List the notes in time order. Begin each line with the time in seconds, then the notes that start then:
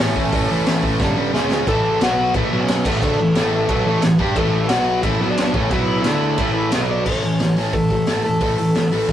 Already playing: C#4 C#5
0.00 A1 A2 E3 A3
0.16 A2 E3 A3, kick
0.32 A1 A2 E3 A3, kick, open hi-hat
0.49 A1 A2 E3 A3
0.66 A1 A2 E3 A3, snare, open hi-hat
0.82 A2 E3 A3, kick
0.99 G1 G2 D3 G3, kick, snare
1.16 G2 D3 G3
1.33 C#2 C#3 G#3 C#4, snare
1.50 C#2 C#3 G#3 C#4, snare
1.67 A1 A2 E3 A3 A4, kick, crash
2.00 B1 B2 F#3 B3 F#4 F#5, snare, crash
2.34 A1 A2 E3 A3 E4 E5, kick, crash
2.51 B1 B2 F#3 B3
2.60 C#4 C#5
2.68 snare, crash
2.85 A1 A2 E3 A3 B3 B4, kick, crash
3.02 D2 D3 A3 D4 A4, kick, crash
3.19 A1 A2 E3
3.35 A1 A2 E3 A3, snare, crash
3.69 B1 B2 F#3 B3, kick, crash
3.85 A1 A2 E3 A3
4.02 A1 A2 E3, snare, crash
4.19 G2 G3 D4 G4, kick
4.36 A1 A2 E3 A3 A4, kick, crash
4.69 B1 B2 F#3 B3 F#4 F#5, snare, crash
5.03 A1 A2 E3 A3 E4 E5, kick, crash
5.20 B1 B2 F#3 B3
5.30 D4 D5
5.37 snare, crash
5.54 A1 A2 E3 A3 C#4 C#5, kick
5.71 B1 B2 F#3 B3 E4 E5, kick, crash
6.04 D2 D3 A3 D4, snare, crash
6.38 A1 A2 E3 A3, kick, crash
6.72 B1 B2 F#3 B3, snare, crash
6.91 D4 D5
7.05 A1 A2 E3 A3 C#4 C#5, kick, crash
7.22 A2 E3, open hi-hat
7.39 A1 A2 E3, snare, open hi-hat
7.57 A2 E3 A3, open hi-hat
7.73 A1 A2 E3 A3 A4, kick, open hi-hat
7.90 A1 A2 E3, kick, open hi-hat
8.06 A1 A2 E3 A3, snare, open hi-hat
8.24 E1 A2 E3 A3 A4, open hi-hat
8.40 A1 A2 E3 A3, kick, open hi-hat
8.58 A1 A2 E3, open hi-hat
8.75 A2 E3, snare, open hi-hat
8.92 A1 A2 E3 A3, open hi-hat
9.09 A1 A2 E3, kick, open hi-hat